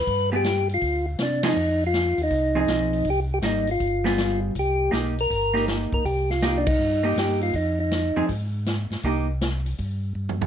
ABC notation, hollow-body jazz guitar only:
X:1
M:4/4
L:1/8
Q:"Swing" 1/4=160
K:Cm
V:1 name="Hollow-body jazz guitar"
z [G,=B,FA] z4 z [F,CEA] | z4 z [F,CEA]3 | z2 [G,B,E] z2 [G,=B,FA]3 | z2 [B,EG] z2 [B,EG]3 |
z2 [B,EG] z2 [B,EG]3 | z3 [F,CEA] z4 | [B,EG] z6 z |]